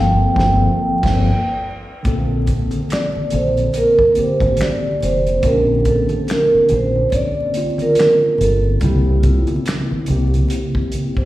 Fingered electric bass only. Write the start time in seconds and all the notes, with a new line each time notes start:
Already playing: G1
0.37 G1
1.04 G1
2.06 A#1
3.16 muted fingered electric bass stroke
3.34 A#1
4.18 muted fingered electric bass stroke
4.41 A1
5.03 F1
5.44 A#1
6.54 muted fingered electric bass stroke
6.72 A#1
8.41 G1
8.82 C2
9.92 muted fingered electric bass stroke
10.10 C2